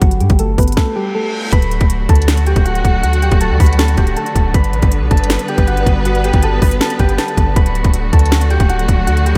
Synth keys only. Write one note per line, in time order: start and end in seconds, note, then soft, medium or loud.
0.02 0.18 F#3 medium
0.02 0.17 F#4 loud
0.21 0.37 G3 medium
0.21 0.36 G4 medium
0.39 0.56 A3 medium
0.39 0.55 A4 medium
0.58 0.74 B3 medium
0.58 0.74 B4 medium
0.77 0.93 A3 medium
0.77 0.93 A4 medium
0.96 1.12 G3 medium
0.96 1.12 G4 medium
1.15 1.51 A3 medium
1.15 1.50 A4 medium
1.52 1.88 B4 medium
1.52 1.88 B5 loud
2.09 2.45 A4 medium
2.09 2.44 A5 medium
2.47 2.63 G4 medium
2.47 2.63 G5 loud
2.65 3.01 F#4 medium
2.65 3.01 F#5 medium
3.03 3.20 F#4 medium
3.03 3.19 F#5 loud
3.22 3.39 G4 medium
3.22 3.38 G5 medium
3.41 3.57 A4 medium
3.41 3.57 A5 medium
3.60 3.76 B4 medium
3.60 3.76 B5 medium
3.79 3.95 A4 medium
3.79 3.95 A5 medium
3.98 4.14 G4 medium
3.98 4.14 G5 medium
4.17 4.53 A4 medium
4.17 4.52 A5 medium
4.54 4.90 B4 medium
4.54 4.90 B5 loud
5.11 5.47 A4 medium
5.11 5.46 A5 medium
5.49 5.65 G4 medium
5.49 5.65 G5 medium
5.67 6.03 F#4 medium
5.67 6.03 F#5 medium
6.05 6.22 F#4 medium
6.05 6.21 F#5 loud
6.24 6.41 G4 medium
6.24 6.40 G5 medium
6.43 6.59 A4 medium
6.43 6.59 A5 medium
6.62 6.78 B4 medium
6.62 6.78 B5 medium
6.81 6.97 A4 medium
6.81 6.97 A5 medium
7.00 7.16 G4 medium
7.00 7.15 G5 medium
7.19 7.54 A4 medium
7.19 7.54 A5 medium
7.56 7.92 B4 medium
7.56 7.92 B5 loud
8.13 8.49 A4 medium
8.13 8.48 A5 medium
8.51 8.67 G4 medium
8.51 8.66 G5 medium
8.69 9.05 F#4 medium
8.69 9.05 F#5 medium
9.07 9.23 F#4 medium
9.07 9.23 F#5 loud
9.26 9.38 G4 medium
9.26 9.38 G5 medium